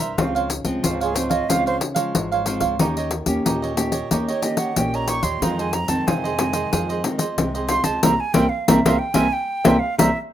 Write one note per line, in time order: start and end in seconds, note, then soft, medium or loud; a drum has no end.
0.00 0.14 C2 medium
0.00 0.15 G2 soft
0.00 0.16 A#4 medium
0.00 0.16 C5 medium
0.00 0.15 E5 medium
0.00 0.18 A#5 medium
0.17 0.60 C#2 medium
0.17 0.81 C#3 medium
0.17 0.49 F3 medium
0.17 0.49 G#3 medium
0.17 0.49 C4 medium
0.17 0.33 F4 medium
0.17 0.33 C5 soft
0.17 0.34 C#5 medium
0.17 0.34 F5 medium
0.17 pandeiro medium
0.35 0.48 C5 medium
0.35 0.48 C#5 medium
0.35 0.49 F5 medium
0.35 pandeiro soft
0.49 muted cavaquinho stroke soft
0.49 pandeiro medium
0.64 0.80 C#2 medium
0.64 1.10 F3 medium
0.64 1.10 G#3 medium
0.64 1.10 C4 medium
0.64 pandeiro medium
0.83 1.40 C#2 medium
0.83 1.46 G#2 medium
0.83 0.99 F4 soft
0.83 0.99 C5 soft
0.83 0.99 C#5 medium
0.83 0.99 F5 medium
0.83 pandeiro medium
1.01 1.16 G#4 medium
1.01 1.30 C5 medium
1.01 1.29 C#5 medium
1.01 1.28 F5 medium
1.01 pandeiro soft
1.15 1.43 F3 medium
1.15 1.44 G#3 medium
1.15 1.44 C4 medium
1.15 1.32 C5 medium
1.15 pandeiro medium
1.29 1.47 C5 medium
1.29 1.47 C#5 medium
1.29 1.51 D#5 medium
1.29 1.46 F5 medium
1.29 pandeiro medium
1.49 1.77 C#2 medium
1.49 2.12 C#3 medium
1.49 1.80 F3 medium
1.49 1.80 G#3 medium
1.49 1.81 C4 medium
1.49 1.64 F4 medium
1.49 1.64 C5 soft
1.49 1.65 C#5 medium
1.49 1.66 F5 medium
1.49 1.65 F5 medium
1.49 pandeiro medium
1.66 1.76 C5 medium
1.66 1.79 C5 soft
1.66 1.80 C#5 medium
1.66 1.80 F5 medium
1.66 pandeiro soft
1.80 muted cavaquinho stroke soft
1.80 pandeiro medium
1.95 2.41 F3 medium
1.95 2.41 G#3 medium
1.95 2.29 C5 medium
1.95 2.29 C#5 medium
1.95 2.28 F5 medium
1.95 pandeiro medium
2.15 2.56 G#1 medium
2.15 2.77 G#2 medium
2.15 pandeiro medium
2.32 2.45 C5 medium
2.32 2.46 C#5 medium
2.32 2.46 F5 medium
2.32 pandeiro soft
2.45 2.74 F3 medium
2.45 2.75 G#3 medium
2.45 2.75 C4 medium
2.45 2.62 F4 soft
2.45 2.61 C5 medium
2.45 2.60 C#5 medium
2.45 2.59 F5 medium
2.45 pandeiro medium
2.60 2.76 C#2 medium
2.60 2.78 C5 medium
2.60 2.78 C#5 medium
2.60 2.77 F5 medium
2.60 pandeiro medium
2.79 3.22 D#2 loud
2.79 3.43 D#3 medium
2.79 3.11 A#3 medium
2.79 3.11 C#4 medium
2.79 2.95 D#4 medium
2.79 2.95 G4 medium
2.79 3.11 G4 medium
2.79 2.96 C#5 medium
2.79 2.96 D#5 medium
2.79 pandeiro medium
2.97 3.10 G4 medium
2.97 3.11 C#5 medium
2.97 3.11 D#5 medium
2.97 pandeiro soft
3.11 muted cavaquinho stroke soft
3.11 pandeiro medium
3.26 3.42 D#2 medium
3.26 3.72 A#3 medium
3.26 3.72 C#4 medium
3.26 3.72 G4 medium
3.26 pandeiro medium
3.45 4.01 D#2 medium
3.45 4.08 A#2 medium
3.45 3.61 D#4 soft
3.45 3.61 G4 medium
3.45 3.61 C#5 soft
3.45 3.61 D#5 soft
3.45 pandeiro medium
3.62 3.92 G4 medium
3.62 3.92 C#5 medium
3.62 3.91 D#5 medium
3.62 pandeiro soft
3.77 3.97 A#3 medium
3.77 3.97 C#4 medium
3.77 3.98 G4 medium
3.77 pandeiro medium
3.92 4.09 G4 medium
3.92 4.09 C#5 medium
3.92 4.08 D#5 medium
3.92 pandeiro medium
4.11 4.39 D#2 medium
4.11 4.73 D#3 medium
4.11 4.30 A#3 medium
4.11 4.31 C#4 medium
4.11 4.26 D#4 soft
4.11 4.26 G4 medium
4.11 4.31 G4 medium
4.11 4.27 C#5 medium
4.11 4.27 D#5 medium
4.11 pandeiro medium
4.28 4.42 G4 medium
4.28 4.44 C#5 medium
4.28 4.42 C#5 medium
4.28 4.42 D#5 medium
4.28 pandeiro soft
4.42 4.71 A#3 medium
4.42 4.71 C#4 medium
4.42 4.71 G4 medium
4.42 4.59 D#5 medium
4.42 muted cavaquinho stroke soft
4.42 pandeiro medium
4.57 4.91 G4 medium
4.57 4.91 C#5 medium
4.57 4.90 D#5 medium
4.57 4.79 F#5 medium
4.57 pandeiro medium
4.76 5.18 A#1 medium
4.76 5.39 A#2 medium
4.76 5.19 A#3 medium
4.76 5.19 C#4 medium
4.76 5.19 G4 medium
4.76 4.97 G5 medium
4.76 pandeiro medium
4.94 5.07 G4 medium
4.94 5.08 C#5 medium
4.94 5.08 D#5 medium
4.94 5.10 A#5 medium
4.94 pandeiro soft
5.08 5.23 D#4 soft
5.08 5.23 G4 medium
5.08 5.22 C#5 medium
5.08 5.21 D#5 medium
5.08 5.25 C#6 loud
5.08 pandeiro medium
5.22 5.38 D#2 loud
5.22 5.40 G4 medium
5.22 5.40 C#5 medium
5.22 5.39 D#5 medium
5.22 5.44 C6 medium
5.22 pandeiro medium
5.42 6.04 F2 medium
5.42 5.84 F2 loud
5.42 5.73 D#3 medium
5.42 5.73 G#3 medium
5.42 5.73 C4 medium
5.42 5.57 F4 medium
5.42 5.57 G#4 medium
5.42 5.57 C5 medium
5.42 5.58 D#5 medium
5.42 5.62 A#5 medium
5.42 pandeiro medium
5.59 5.72 G#4 medium
5.59 5.72 C5 medium
5.59 5.72 D#5 medium
5.59 5.75 G#5 medium
5.59 pandeiro soft
5.72 5.90 A#5 loud
5.72 muted cavaquinho stroke soft
5.72 pandeiro medium
5.88 6.03 F2 medium
5.88 6.33 D#3 medium
5.88 6.34 G#3 medium
5.88 6.34 C4 medium
5.88 6.09 A5 medium
5.88 pandeiro medium
6.07 6.63 F2 medium
6.07 6.69 C3 medium
6.07 6.22 F4 soft
6.07 6.22 G#4 medium
6.07 6.23 C5 medium
6.07 6.23 D#5 medium
6.07 7.05 G#5 medium
6.07 pandeiro medium
6.24 6.54 G#4 medium
6.24 6.53 C5 medium
6.24 6.52 D#5 medium
6.24 pandeiro soft
6.39 6.99 D#3 medium
6.39 7.00 G#3 medium
6.39 7.00 C4 medium
6.39 pandeiro medium
6.53 6.70 G#4 medium
6.53 6.70 C5 medium
6.53 6.70 D#5 medium
6.53 pandeiro medium
6.72 7.35 F2 medium
6.72 7.00 F2 loud
6.72 6.87 F4 soft
6.72 6.88 G#4 medium
6.72 6.88 C5 soft
6.72 6.88 D#5 medium
6.72 pandeiro medium
6.89 7.03 G#4 medium
6.89 7.03 C5 medium
6.89 7.03 D#5 medium
6.89 pandeiro soft
7.04 7.24 D#3 medium
7.04 7.24 G#3 medium
7.04 7.24 C4 medium
7.04 muted cavaquinho stroke soft
7.04 pandeiro medium
7.18 7.52 G#4 medium
7.18 7.52 C5 medium
7.18 7.51 D#5 medium
7.18 pandeiro medium
7.38 7.79 C2 medium
7.38 8.00 C3 medium
7.38 7.98 D#3 medium
7.38 7.98 G#3 medium
7.38 7.99 C4 medium
7.38 pandeiro medium
7.54 7.68 G#4 medium
7.54 7.69 C5 medium
7.54 7.69 D#5 medium
7.54 pandeiro soft
7.68 7.84 F4 medium
7.68 7.85 G#4 medium
7.68 7.84 C5 medium
7.68 7.82 D#5 medium
7.68 7.86 C6 medium
7.68 pandeiro medium
7.84 7.99 C#2 medium
7.84 8.01 G#4 medium
7.84 8.01 C5 medium
7.84 8.00 D#5 medium
7.84 8.05 A5 medium
7.84 pandeiro medium
8.03 8.15 C2 loud
8.03 8.14 G3 medium
8.03 8.14 A#3 medium
8.03 8.14 C4 medium
8.03 8.13 A#4 loud
8.03 8.14 C5 medium
8.03 8.14 E5 medium
8.03 8.22 A#5 medium
8.03 pandeiro loud
8.20 8.35 G#5 medium
8.34 8.47 C2 loud
8.34 8.45 G3 loud
8.34 8.45 A#3 loud
8.34 8.45 C4 medium
8.34 8.46 A#4 medium
8.34 8.46 C5 medium
8.34 8.46 E5 medium
8.34 8.51 G5 medium
8.34 pandeiro loud
8.49 8.70 F5 medium
8.68 8.81 C2 loud
8.68 8.79 G3 loud
8.68 8.79 A#3 loud
8.68 8.79 C4 loud
8.68 8.79 A#4 medium
8.68 8.79 C5 medium
8.68 8.87 E5 medium
8.68 8.79 E5 medium
8.68 pandeiro loud
8.85 8.97 C2 loud
8.85 8.96 G3 loud
8.85 8.96 A#3 loud
8.85 8.96 C4 loud
8.85 8.96 A#4 loud
8.85 8.96 C5 loud
8.85 8.96 E5 loud
8.85 9.00 F5 medium
8.85 pandeiro loud
8.99 9.15 G5 medium
9.14 9.28 C2 loud
9.14 9.26 G3 loud
9.14 9.26 A#3 loud
9.14 9.26 C4 loud
9.14 9.26 A#4 loud
9.14 9.26 C5 loud
9.14 9.26 E5 medium
9.14 9.34 G#5 loud
9.14 pandeiro medium
9.33 9.81 G5 medium
9.64 9.78 C2 loud
9.64 9.76 G3 loud
9.64 9.76 A#3 loud
9.64 9.76 C4 loud
9.64 9.76 A#4 medium
9.64 9.76 C5 medium
9.64 9.76 E5 loud
9.64 pandeiro loud
9.79 9.97 F5 medium
9.98 10.11 C2 medium
9.98 10.09 G3 medium
9.98 10.09 A#3 loud
9.98 10.09 C4 loud
9.98 10.09 A#4 loud
9.98 10.09 C5 loud
9.98 10.18 E5 medium
9.98 10.09 E5 loud
9.98 pandeiro loud